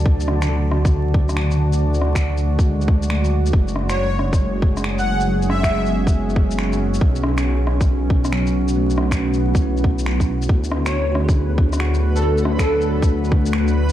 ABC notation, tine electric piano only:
X:1
M:4/4
L:1/16
Q:"Swing 16ths" 1/4=138
K:Dlyd
V:1 name="Tine electric piano"
z4 D,8- D,2 z2 | z8 G,4 A,4- | A,2 z6 G,8 | F,4 G, B,8- B,2 z |
z12 F,4 | A,4 C4 [B,E]8- | [B,E]2 z2 D F G6 F4 | A c8- c2 z4 z |]